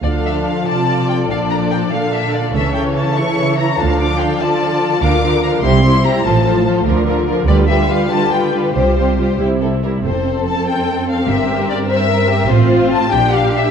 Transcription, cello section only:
X:1
M:6/8
L:1/8
Q:3/8=97
K:Dm
V:1 name="Cello section" clef=bass
D,3 C,3 | B,,3 B,,3 | ^C,6 | D,6 |
[K:F] D,3 C,3 | A,,3 D,3 | D,3 D,3 | C,3 C,3 |
F,,6 | G,,6 | A,,3 B,,3 |]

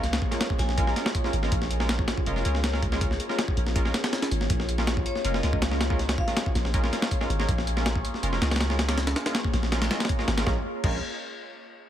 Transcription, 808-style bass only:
X:1
M:4/4
L:1/8
Q:1/4=161
K:Bbm
V:1 name="808-style bass" clef=bass
D,, z2 B,,,2 z2 A,,, | B,,,3 z F,,, D,,3- | D,, z2 B,,,2 z2 A,,, | B,,,3 z F,,, D,,3- |
D,, z2 B,,,2 z2 A,,, | B,,,3 z F,,, D,,3- | D,, z2 B,,,2 z2 A,,, | B,,, z B,,, z4 z |]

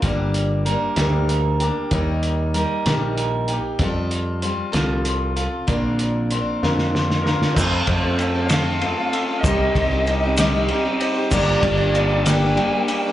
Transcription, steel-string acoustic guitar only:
X:1
M:6/8
L:1/16
Q:3/8=64
K:Fmix
V:1 name="Steel-string acoustic guitar"
[G,,D,G,B,DB]4 [G,B,DB]2 [G,,D,G,B,DB]4 [G,B,DB]2 | [E,G,B,EB]4 [G,B,EB]2 [E,G,B,EB]4 [B,EB]2 | [F,G,CFA]4 [G,CFA]2 [F,G,CFA]4 [CFA]2 | [B,,D,F,CDB]4 [F,CDB]2 [B,,D,F,CDB]4 [F,CDB]2 |
[F,CFA]2 [F,CFA] [CFA]2 [CFA] [F,CFA]2 [F,CFA] [CFA]2 [CFA] | [C,G,CEG]2 [G,CEG] [CEG]2 [CEG] [C,G,CEG]2 [G,CEG] [CEG]2 [CEG] | [G,,D,G,B,DG]2 [G,B,DG] [G,B,DG]2 [G,B,DG] [G,,D,G,B,DG]2 [G,B,DG] [G,B,DG]2 [G,B,DG] |]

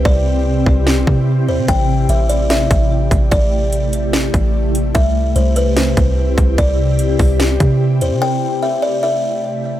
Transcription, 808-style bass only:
X:1
M:4/4
L:1/16
Q:1/4=147
K:Am
V:1 name="808-style bass" clef=bass
C,,6 C,,4 C,4 D,, C, | A,,,4 A,,,6 A,,,4 A,,,2 | A,,,8- A,,,2 A,,,6 | C,,4 C,,6 C,,4 C,,2 |
C,,6 C,,4 C,4 D,, C, | z16 |]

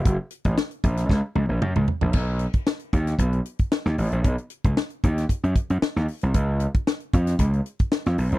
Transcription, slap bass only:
X:1
M:4/4
L:1/16
Q:1/4=114
K:B
V:1 name="Slap bass" clef=bass
F,,, z2 =A,,, z2 ^A,,,2 C,, z C,, A,,, F,, C,, z A,,, | B,,,3 z3 D,,2 B,,,2 z3 D,, =A,,, ^A,,, | B,,, z2 C,, z2 D,,2 z F,, z F,, z D,, z ^B,,, | C,,3 z3 ^E,,2 C,,2 z3 E,, B,,, ^B,,, |]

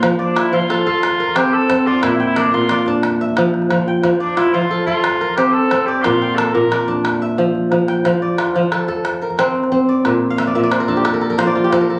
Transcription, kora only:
X:1
M:12/8
L:1/16
Q:3/8=120
K:F
V:1 name="Kora"
c2 d2 F4 A6 B6 z2 d2- | d2 g2 B4 d6 e6 z2 g2- | g2 d2 F4 A6 B6 z2 d2- | d2 g2 B4 d6 e6 z2 g2- |
g2 d2 F4 A6 B6 z2 d2- | d2 z f e d e d c B A G A B A B c d F G A B A2 |]
V:2 name="Kora" clef=bass
F,4 z2 F,4 A4 z2 C4 C4 | B,,4 z2 B,,4 D4 z2 F,4 F,4 | F,4 z2 F,4 A4 z2 C4 C4 | B,,4 z2 B,,4 D4 z2 F,4 F,4 |
F,4 z2 F,4 A4 z2 C4 C4 | B,,4 z2 B,,4 D4 z2 F,4 F,4 |]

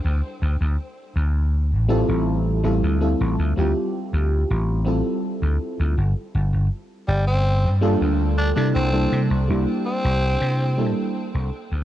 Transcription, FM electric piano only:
X:1
M:4/4
L:1/16
Q:1/4=81
K:Dm
V:1 name="FM electric piano"
z8 z2 [G,CEFA]4 [G,CEFA]2 | [G,CEFA]3 [G,CEFG]6- [G,CEFG] [G,CEFA]6 | z8 z2 [G,B,DFA]4 [G,B,DEA]2 | [G,B,DEA]3 [G,B,DEG]6- [G,B,DEG] [G,B,DEA]4 z2 |]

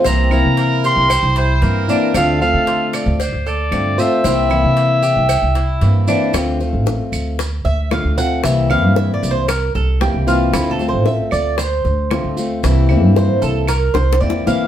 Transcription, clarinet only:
X:1
M:4/4
L:1/8
Q:1/4=114
K:Dm
V:1 name="Clarinet"
b b2 c'2 c2 z | f f2 z c d2 e- | e6- e z | z8 |
z8 | z8 | z8 |]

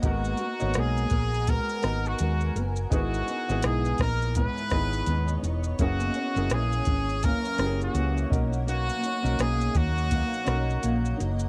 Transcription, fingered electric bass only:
X:1
M:4/4
L:1/16
Q:"Swing 16ths" 1/4=83
K:B
V:1 name="Fingered electric bass" clef=bass
G,,,2 z G,,, B,,,2 A,,,3 z G,,,2 D,,2 F,,,2 | G,,,2 z G,,, B,,,2 A,,,3 z G,,,2 D,,2 E,,,2 | F,,,2 z F,,, A,,,2 G,,,3 z F,,,2 C,,2 B,,,2- | B,,,2 z B,,, B,,,2 D,,3 z B,,,2 A,,,2 F,,,2 |]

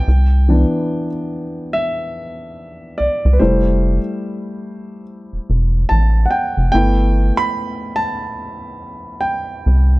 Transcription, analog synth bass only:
X:1
M:4/4
L:1/16
Q:"Swing 16ths" 1/4=72
K:Clyd
V:1 name="Analog synth bass" clef=bass
C,,3 z8 z3 C,, C,, | =F,,,3 z6 E,,, E,,,2 A,,,2 z F,,, | G,,,3 z8 z3 C,,2 |]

